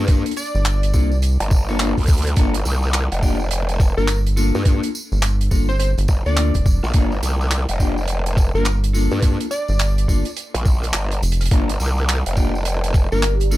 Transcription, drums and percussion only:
0.08 kick loud
0.08 closed hi-hat medium
0.08 tambourine medium
0.26 closed hi-hat medium
0.26 tambourine soft
0.31 closed hi-hat soft
0.36 closed hi-hat soft
0.36 tambourine loud
0.46 closed hi-hat soft
0.55 tambourine soft
0.65 clap loud
0.65 closed hi-hat loud
0.65 tambourine medium
0.83 closed hi-hat medium
0.83 tambourine soft
0.94 kick medium
0.94 tambourine loud
1.12 tambourine soft
1.22 closed hi-hat medium
1.22 tambourine medium
1.40 closed hi-hat medium
1.40 tambourine soft
1.51 kick loud
1.51 tambourine medium
1.69 tambourine soft
1.79 clap loud
1.79 closed hi-hat medium
1.79 tambourine medium
1.97 kick medium
1.97 closed hi-hat soft
1.97 tambourine soft
2.01 closed hi-hat soft
2.03 closed hi-hat soft
2.06 kick loud
2.06 closed hi-hat soft
2.06 tambourine loud
2.09 closed hi-hat soft
2.13 closed hi-hat soft
2.18 closed hi-hat medium
2.22 closed hi-hat medium
2.22 tambourine soft
2.27 cross-stick soft
2.27 closed hi-hat medium
2.36 kick loud
2.36 closed hi-hat medium
2.36 tambourine soft
2.54 closed hi-hat medium
2.54 tambourine soft
2.65 cross-stick soft
2.65 tambourine loud
2.83 tambourine soft
2.93 clap loud
2.93 closed hi-hat medium
2.93 tambourine medium
3.12 closed hi-hat medium
3.12 tambourine soft
3.23 kick medium
3.23 tambourine medium
3.40 tambourine soft
3.51 closed hi-hat medium
3.51 tambourine soft
3.69 closed hi-hat medium
3.69 tambourine soft
3.80 kick loud
3.80 cross-stick soft
3.80 tambourine loud
3.98 tambourine soft
4.08 clap loud
4.08 closed hi-hat medium
4.08 tambourine medium
4.26 closed hi-hat medium
4.26 tambourine soft
4.37 tambourine loud
4.55 tambourine soft
4.65 kick loud
4.65 closed hi-hat medium
4.65 tambourine soft
4.83 closed hi-hat medium
4.83 tambourine soft
4.95 tambourine loud
5.12 tambourine soft
5.22 clap loud
5.22 closed hi-hat medium
5.22 tambourine medium
5.41 closed hi-hat medium
5.41 tambourine soft
5.51 kick medium
5.51 tambourine loud
5.70 tambourine soft
5.80 closed hi-hat medium
5.80 tambourine soft
5.98 closed hi-hat medium
5.98 tambourine soft
6.08 kick loud
6.08 tambourine medium
6.26 tambourine soft
6.37 clap loud
6.37 closed hi-hat medium
6.37 tambourine soft
6.54 kick medium
6.54 closed hi-hat medium
6.54 tambourine soft
6.66 kick loud
6.66 tambourine medium
6.83 cross-stick soft
6.83 tambourine soft
6.94 kick loud
6.94 closed hi-hat medium
6.94 tambourine soft
7.12 tambourine soft
7.23 cross-stick soft
7.23 closed hi-hat medium
7.23 tambourine medium
7.41 tambourine soft
7.51 clap loud
7.51 closed hi-hat medium
7.51 tambourine medium
7.69 closed hi-hat medium
7.69 tambourine soft
7.80 kick medium
7.80 tambourine medium
7.98 tambourine soft
8.08 closed hi-hat medium
8.08 tambourine soft
8.26 closed hi-hat medium
8.26 tambourine soft
8.36 kick loud
8.36 cross-stick medium
8.36 tambourine medium
8.55 tambourine soft
8.65 clap loud
8.65 closed hi-hat medium
8.65 tambourine soft
8.84 closed hi-hat medium
8.84 tambourine soft
8.94 tambourine medium
9.11 tambourine soft
9.22 kick loud
9.22 closed hi-hat medium
9.22 tambourine medium
9.41 closed hi-hat medium
9.41 tambourine soft
9.51 cross-stick soft
9.51 tambourine medium
9.68 tambourine soft
9.79 clap loud
9.79 closed hi-hat medium
9.79 tambourine medium
9.98 closed hi-hat medium
9.98 tambourine soft
10.08 kick medium
10.08 tambourine medium
10.25 closed hi-hat medium
10.25 tambourine soft
10.37 closed hi-hat medium
10.37 tambourine medium
10.55 closed hi-hat medium
10.55 tambourine soft
10.65 kick medium
10.65 tambourine medium
10.83 cross-stick soft
10.83 closed hi-hat medium
10.83 tambourine soft
10.93 clap loud
10.93 closed hi-hat medium
10.93 tambourine soft
11.11 closed hi-hat medium
11.11 tambourine soft
11.23 closed hi-hat medium
11.23 tambourine medium
11.32 closed hi-hat medium
11.41 cross-stick soft
11.41 closed hi-hat medium
11.41 tambourine soft
11.46 closed hi-hat medium
11.51 kick loud
11.51 closed hi-hat medium
11.51 tambourine medium
11.69 closed hi-hat medium
11.69 tambourine soft
11.80 cross-stick soft
11.80 tambourine medium
11.97 tambourine soft
12.08 clap loud
12.08 closed hi-hat medium
12.08 tambourine medium
12.26 closed hi-hat medium
12.26 tambourine soft
12.37 kick medium
12.37 tambourine medium
12.55 tambourine soft
12.65 closed hi-hat medium
12.65 tambourine medium
12.84 closed hi-hat medium
12.84 tambourine soft
12.93 kick loud
12.93 cross-stick medium
12.93 tambourine medium
13.12 tambourine soft
13.23 clap loud
13.23 closed hi-hat medium
13.23 tambourine medium
13.40 closed hi-hat medium
13.40 tambourine soft
13.51 tambourine medium

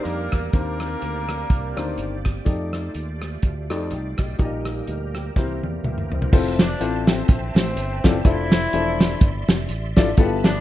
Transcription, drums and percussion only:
0.05 closed hi-hat medium
0.32 kick medium
0.32 cross-stick loud
0.32 closed hi-hat medium
0.53 kick medium
0.53 closed hi-hat medium
0.80 cross-stick loud
0.80 closed hi-hat medium
1.02 closed hi-hat medium
1.29 cross-stick medium
1.29 closed hi-hat medium
1.50 kick loud
1.50 closed hi-hat medium
1.77 cross-stick medium
1.77 closed hi-hat medium
1.98 closed hi-hat medium
2.25 kick medium
2.25 cross-stick loud
2.25 closed hi-hat medium
2.46 kick medium
2.46 closed hi-hat medium
2.73 cross-stick medium
2.73 closed hi-hat medium
2.94 closed hi-hat medium
3.22 cross-stick medium
3.22 closed hi-hat medium
3.42 kick medium
3.42 closed hi-hat medium
3.70 cross-stick loud
3.70 closed hi-hat medium
3.90 closed hi-hat medium
4.18 kick medium
4.18 cross-stick loud
4.18 closed hi-hat medium
4.39 kick medium
4.39 closed hi-hat medium
4.65 cross-stick medium
4.65 closed hi-hat medium
4.87 closed hi-hat medium
5.15 cross-stick loud
5.15 closed hi-hat medium
5.36 kick loud
5.36 snare soft
5.63 high tom medium
5.84 mid tom medium
5.98 mid tom medium
6.12 floor tom medium
6.22 floor tom medium
6.33 kick loud
6.33 crash loud
6.59 snare loud
6.59 closed hi-hat medium
6.81 closed hi-hat medium
7.07 snare loud
7.07 closed hi-hat medium
7.28 kick loud
7.28 closed hi-hat loud
7.56 snare loud
7.56 closed hi-hat medium
7.77 closed hi-hat loud
8.04 kick medium
8.04 snare loud
8.04 closed hi-hat medium
8.25 kick loud
8.25 closed hi-hat medium
8.52 snare loud
8.52 closed hi-hat medium
8.73 closed hi-hat loud
9.00 snare loud
9.00 closed hi-hat medium
9.21 kick loud
9.21 closed hi-hat loud
9.48 snare loud
9.48 closed hi-hat medium
9.69 closed hi-hat loud
9.96 kick medium
9.96 snare loud
9.96 closed hi-hat medium
10.17 kick loud
10.17 closed hi-hat medium
10.44 snare loud
10.44 closed hi-hat medium

